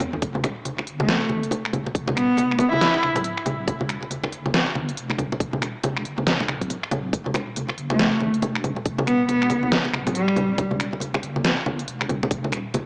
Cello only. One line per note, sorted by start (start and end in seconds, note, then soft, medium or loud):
1.00 1.30 A3 medium
2.17 2.51 B3 medium
2.60 2.70 B3 medium
2.73 3.03 E4 medium
7.91 8.21 A3 medium
9.07 9.28 B3 medium
9.29 9.63 B3 medium
10.15 10.58 G3 loud